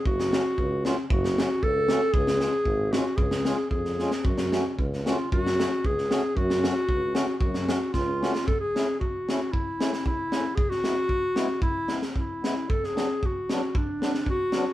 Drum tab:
SD |-oo---o-|-oo---o-|-oo---o-|-oo--ooo|
BD |o---o---|o---o---|o---o---|o---o---|

SD |-oo--oo-|-oo--oo-|-oo---o-|-oo-o-oo|
BD |o---o---|o---o---|o---o---|o---o---|

SD |--o---o-|--oo--o-|-oo---o-|--oo--o-|
BD |o---o---|o---o---|o---o---|o---o---|

SD |-oo---o-|--oo--o-|
BD |o---o---|o---o---|